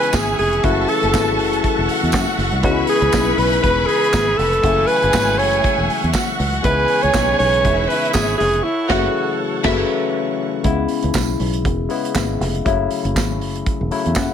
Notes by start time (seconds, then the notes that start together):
Already playing: C#3 E3 G#3 B3 E4 G#4 B4 E5 G#5 C#6
0.03 closed hi-hat
0.13 G#1 G#4, kick, snare, clap, closed hi-hat, tambourine
0.39 F1 G#4, open hi-hat
0.53 closed hi-hat
0.62 F#1 C#3 E3 F#3 A3 E4 F#4 A4 F#5 A5, kick, closed hi-hat
0.88 A4, open hi-hat
1.03 F#1, closed hi-hat
1.13 G#1 C#3 E3 F#3 A3 E4, kick, snare, clap, closed hi-hat, tambourine
1.39 F#1, open hi-hat
1.53 closed hi-hat
1.64 kick, closed hi-hat
1.78 E1
1.88 F#4 F#5, open hi-hat
2.03 E2, closed hi-hat
2.12 F#2, kick, snare, clap, closed hi-hat, tambourine
2.38 F#1, snare, open hi-hat
2.52 C2, closed hi-hat
2.63 C#2 C#3 E3 G#3 B3 D#4 F#4 B4 G#5 B5, kick, closed hi-hat
2.71 E4
2.87 G#4, open hi-hat
3.02 C#2, closed hi-hat
3.12 B1 C#3 E3 G#3 B3 D#4, kick, snare, clap, closed hi-hat, tambourine
3.20 E4
3.37 B1 B4, open hi-hat
3.53 closed hi-hat
3.63 E1 B4, kick, closed hi-hat
3.86 G#4, open hi-hat
4.04 closed hi-hat
4.13 G#1, kick, snare, clap, closed hi-hat, tambourine
4.37 F1 A4, open hi-hat
4.53 closed hi-hat
4.62 F#1 C#3 E3 F#3 A3 E4 G#4 E5 F#5 G#5, kick, closed hi-hat
4.87 B4, open hi-hat
5.02 F#1, closed hi-hat
5.12 G#1 C#3 E3 F#3 G#3 E4, kick, snare, clap, closed hi-hat, tambourine
5.20 A3
5.39 F#1 C#5, open hi-hat
5.53 closed hi-hat
5.64 kick, closed hi-hat
5.78 E1
5.90 open hi-hat
6.04 E2, closed hi-hat
6.13 F#4 F#5, kick, snare, clap, closed hi-hat, tambourine
6.40 C#2, open hi-hat
6.54 closed hi-hat
6.63 C#2 C#3 E3 G#3 B3 E4 G#4 B4 C#5 G#5, kick, closed hi-hat
6.88 open hi-hat
7.03 C#2 C#5, closed hi-hat
7.14 B1 C#3 E3 G#3 B3 D#4, kick, snare, clap, closed hi-hat, tambourine
7.39 B1 C#5, open hi-hat
7.54 closed hi-hat
7.65 E1 E4 E5, kick, closed hi-hat
7.89 B4, open hi-hat
8.05 closed hi-hat
8.13 G#1 G#4, kick, snare, clap, closed hi-hat, tambourine
8.38 F1 G#4, snare, open hi-hat
8.53 closed hi-hat
8.63 E4 A4 F#5
8.89 F#1 C#3 E3 F#3 A3 E4 F#4 F#5, kick, snare, crash
9.64 F#1 C#3 E3 F#3 A3 E4 E5, kick, snare, crash
10.63 C#2 C#3 G#3 B3 E4, kick, closed hi-hat
10.88 open hi-hat
11.03 C#2, closed hi-hat
11.14 B1, kick, snare, clap, closed hi-hat, tambourine
11.40 B1, open hi-hat
11.53 closed hi-hat
11.65 E1, kick, closed hi-hat
11.89 C#3 G#3 B3 E4, open hi-hat
12.05 closed hi-hat
12.15 G#1, kick, snare, clap, closed hi-hat, tambourine
12.40 F1, snare, open hi-hat
12.55 closed hi-hat
12.65 F#1 C#3 F#3 A3 E4, kick, closed hi-hat
12.91 open hi-hat
13.05 F#1, closed hi-hat
13.16 G#1, kick, snare, clap, closed hi-hat, tambourine
13.41 F#1, open hi-hat
13.56 closed hi-hat
13.66 kick, closed hi-hat
13.81 E1
13.91 C#3 F#3 A3 E4, open hi-hat
14.06 E2, closed hi-hat
14.15 F#2 F#5, kick, snare, clap, closed hi-hat, tambourine